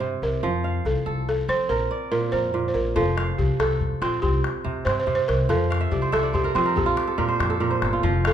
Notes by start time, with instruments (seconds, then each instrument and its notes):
Already playing: upright bass G2, kora C4 E4, balafon C5
0.00 kora C3
0.22 upright bass C2, balafon A#4
0.43 upright bass F2, kora F3
0.64 kora F5
0.85 upright bass C2, balafon A4
1.06 upright bass C2, kora A4
1.29 balafon A4
1.48 upright bass F3, kora C4, balafon C5
1.69 upright bass A#1, balafon A#4, kora A#4
1.91 kora D5
2.12 kora A#2, balafon A#4
2.32 upright bass F2, kora A#4, balafon C5
2.54 kora A#2
2.68 balafon C5
2.74 upright bass A#1, balafon A#4
2.96 upright bass F1, kora F3, balafon A4, calabash thump, calabash click
3.17 kora F5, calabash click
3.29 calabash click
3.38 upright bass C2, balafon G4, calabash thump
3.59 upright bass C2, kora A4, balafon A4, calabash click
3.81 calabash thump
4.01 upright bass A#1, kora C4, balafon F4, calabash click
4.13 calabash click
4.22 upright bass C2, kora C4, balafon G4, calabash thump
4.44 calabash click
4.65 kora C3, calabash thump
4.85 upright bass G2, kora C4, balafon C5, calabash click
5.00 balafon C5
5.07 kora C3, calabash thump
5.15 balafon C5
5.28 upright bass C2, balafon A#4, calabash click
5.39 calabash click
5.49 upright bass F2, kora F3, balafon A4, calabash thump, calabash click
5.70 kora F5, calabash click
5.81 kora E5, calabash click
5.91 upright bass C2, balafon G4, kora D5, calabash thump
6.02 kora C5
6.12 upright bass C2, kora A4 E5, balafon A4, calabash click
6.23 kora D5
6.34 balafon G4, kora C5, calabash thump
6.44 kora A#4
6.55 upright bass F3, kora C4 C5, balafon F4, calabash click
6.65 kora A#4, calabash click
6.76 upright bass A#1, balafon G4, kora A4, calabash thump
6.86 kora F4
6.96 kora G4, calabash click
7.07 kora A4
7.18 kora A#2 A#4, calabash thump
7.28 kora C5
7.39 upright bass F2, kora G4, calabash click
7.50 kora A4
7.60 kora A#2 A#4
7.71 kora C5
7.82 upright bass G1, kora A4, calabash click
7.93 kora F4, calabash click
8.03 upright bass F1, kora F3, calabash thump, calabash click
8.25 balafon A4, kora F5, calabash click